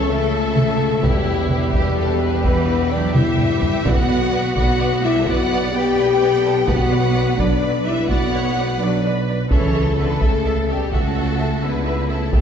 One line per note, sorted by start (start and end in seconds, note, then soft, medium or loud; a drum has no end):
0.00 0.99 C#2 medium
0.00 1.05 C#2 medium
0.00 0.99 A4 medium
0.00 1.04 A4 medium
0.00 3.82 E5 medium
0.09 1.01 C#3 medium
0.09 1.04 A3 medium
0.09 1.03 A4 medium
0.56 taiko mid medium
0.80 taiko mid soft
1.03 3.69 E1 medium
1.03 3.86 E2 medium
1.03 1.48 B2 medium
1.03 1.49 G3 medium
1.03 1.72 E4 medium
1.03 1.49 G4 medium
1.03 3.82 B4 medium
1.03 taiko loud
1.50 2.42 B2 medium
1.50 2.42 G3 loud
1.50 2.43 G4 medium
1.50 taiko mid medium
1.73 1.97 G4 medium
1.73 taiko medium
1.98 2.20 A4 medium
2.22 2.44 B4 medium
2.44 2.91 E3 medium
2.44 2.91 B3 medium
2.44 3.83 G4 medium
2.44 2.92 B4 medium
2.44 taiko medium
2.91 3.15 F#3 medium
2.91 3.15 D4 medium
2.91 3.15 D5 medium
3.13 3.86 G3 medium
3.13 3.85 E4 medium
3.13 3.84 E5 medium
3.13 taiko mid medium
3.38 taiko low-mid medium
3.62 taiko low medium
3.85 4.48 B1 medium
3.85 4.53 B2 medium
3.85 4.56 B3 medium
3.85 4.54 F#4 medium
3.85 5.28 F#4 medium
3.85 3.94 B4 medium
3.85 3.93 D5 medium
3.85 4.55 F#5 medium
3.85 taiko loud
4.09 4.17 B4 medium
4.09 4.17 D5 medium
4.32 4.40 B4 medium
4.32 4.40 D5 medium
4.56 5.19 B1 medium
4.56 5.03 B3 medium
4.56 5.02 F#4 loud
4.56 4.64 B4 medium
4.56 4.64 D5 medium
4.56 5.02 F#5 medium
4.56 taiko medium
4.79 4.87 B4 medium
4.79 4.88 D5 medium
5.03 5.27 G3 medium
5.03 5.27 E4 medium
5.03 5.13 B4 medium
5.03 5.12 D5 medium
5.03 5.27 E5 medium
5.25 5.89 B1 medium
5.25 5.73 B3 medium
5.25 5.57 F#4 loud
5.25 5.98 D5 medium
5.25 5.37 D5 medium
5.25 5.74 F#5 medium
5.25 taiko medium
5.29 5.37 B4 medium
5.51 5.59 B4 medium
5.51 5.59 D5 medium
5.71 6.66 B3 medium
5.71 6.65 G4 loud
5.71 5.82 B4 soft
5.71 5.82 D5 medium
5.76 6.69 G5 medium
5.97 6.60 B1 medium
5.97 6.21 B4 medium
5.97 6.06 B4 medium
5.97 6.06 D5 medium
6.20 6.29 B4 medium
6.20 6.44 D5 medium
6.20 6.28 D5 medium
6.44 6.68 A4 medium
6.44 6.52 B4 medium
6.44 6.53 D5 medium
6.67 7.30 B1 medium
6.67 7.31 B1 medium
6.67 7.37 B3 medium
6.67 7.37 F#4 loud
6.67 6.75 B4 medium
6.67 8.10 B4 medium
6.67 6.75 D5 medium
6.67 7.39 F#5 medium
6.67 taiko loud
6.91 6.99 B4 medium
6.91 6.99 D5 medium
7.14 7.22 B4 medium
7.14 7.23 D5 medium
7.36 8.01 B1 medium
7.36 7.86 F#3 medium
7.36 7.84 D4 medium
7.36 7.46 B4 medium
7.36 7.86 D5 medium
7.36 7.46 D5 medium
7.36 taiko medium
7.63 7.71 B4 medium
7.63 7.71 D5 medium
7.86 8.10 G3 medium
7.86 8.09 E4 medium
7.86 7.95 B4 medium
7.86 7.94 D5 medium
7.86 8.10 E5 medium
8.09 8.72 B1 medium
8.09 8.80 B3 medium
8.09 8.80 F#4 loud
8.09 8.20 B4 medium
8.09 8.34 D5 medium
8.09 8.20 D5 medium
8.09 8.79 F#5 medium
8.09 taiko medium
8.32 8.43 B4 medium
8.32 8.56 C#5 medium
8.32 8.43 D5 soft
8.59 8.67 B4 medium
8.59 9.52 B4 medium
8.59 8.67 D5 soft
8.79 9.43 B1 medium
8.79 9.04 F#3 medium
8.79 9.03 D4 medium
8.79 8.90 B4 medium
8.79 9.04 D5 medium
8.79 8.90 D5 soft
9.05 9.14 B4 medium
9.05 9.13 D5 medium
9.28 9.36 B4 medium
9.28 9.36 D5 medium
9.50 10.13 C#2 medium
9.50 10.14 C#2 medium
9.50 9.94 E3 medium
9.50 9.95 C#4 medium
9.50 9.59 A4 medium
9.50 10.90 A4 medium
9.50 9.95 C#5 medium
9.50 9.59 E5 medium
9.50 taiko loud
9.74 9.83 A4 medium
9.74 9.82 E5 medium
9.98 10.21 D3 medium
9.98 10.21 B3 medium
9.98 10.06 A4 soft
9.98 10.22 B4 medium
9.98 10.06 E5 soft
10.21 10.84 C#2 medium
10.21 10.68 C#3 medium
10.21 10.68 A3 medium
10.21 10.30 A4 soft
10.21 10.69 A4 medium
10.21 10.30 E5 medium
10.21 taiko medium
10.46 10.54 A4 medium
10.46 10.54 E5 medium
10.68 10.92 B2 medium
10.68 10.92 G3 medium
10.68 10.91 G4 medium
10.68 10.77 A4 soft
10.68 10.76 E5 soft
10.92 11.54 C#2 medium
10.92 11.46 C#2 medium
10.92 11.61 C#3 medium
10.92 11.62 A3 medium
10.92 11.61 F#4 medium
10.92 11.63 A4 medium
10.92 11.01 A4 medium
10.92 11.01 E5 medium
10.92 taiko medium
11.15 11.24 A4 soft
11.15 11.23 E5 soft
11.39 11.47 A4 soft
11.39 11.47 E5 soft
11.63 12.25 C#2 medium
11.63 12.10 D3 medium
11.63 12.09 B3 medium
11.63 12.34 E4 medium
11.63 11.71 A4 soft
11.63 12.10 B4 medium
11.63 11.71 E5 soft
11.86 11.94 A4 soft
11.86 11.94 E5 soft
12.09 12.34 C#3 medium
12.09 12.33 A3 medium
12.09 12.17 A4 soft
12.09 12.33 A4 medium
12.09 12.17 E5 soft
12.33 12.41 E1 medium
12.33 12.41 E2 medium
12.33 12.41 B2 medium
12.33 12.41 G3 medium
12.33 12.41 G4 soft
12.33 12.41 G4 medium
12.33 12.41 A4 medium
12.33 12.41 E5 soft
12.33 taiko medium